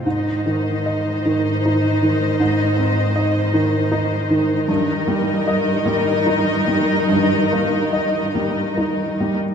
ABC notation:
X:1
M:6/8
L:1/16
Q:3/8=50
K:Ab
V:1 name="Violin section"
[ce]12- | [ce]12 | [Be]12- | [Be]8- [Be]3 z |]
V:2 name="Viola section"
[E,E]12- | [E,E]12 | [E,E]12- | [E,E]8- [E,E]3 z |]
V:3 name="Grand piano" clef=bass
A,,2 E,2 e2 E,2 E2 E,2 | A,,2 C2 e2 E,2 E2 E,2 | G,,2 G,2 e2 G,2 E2 G,2 | G,,2 B,2 e2 G,2 E2 G,2 |]
V:4 name="Cello section" clef=bass
A,,12- | A,,12 | G,,12- | G,,8- G,,3 z |]